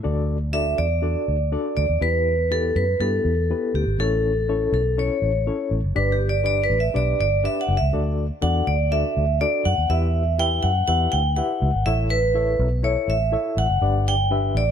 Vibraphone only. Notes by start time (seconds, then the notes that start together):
0.53 E5
0.78 D5
1.77 D5
2.02 B4
2.52 A4
2.76 B4
3.01 A4
3.75 G4
4.00 A4
4.74 A4
4.99 C#5
5.96 B4
6.12 G4
6.29 D5
6.46 D5
6.64 B4
6.80 E5
6.96 D5
7.21 D5
7.45 E5
7.61 F#5
7.77 E5
8.42 F#5
8.67 D5
8.92 E5
9.41 D5
9.65 F#5
9.90 E5
10.39 G5
10.63 F#5
10.88 F#5
11.12 G5
11.37 F#5
11.86 E5
12.10 B4
12.84 C#5
13.10 E5
13.58 F#5
14.08 G5
14.57 D5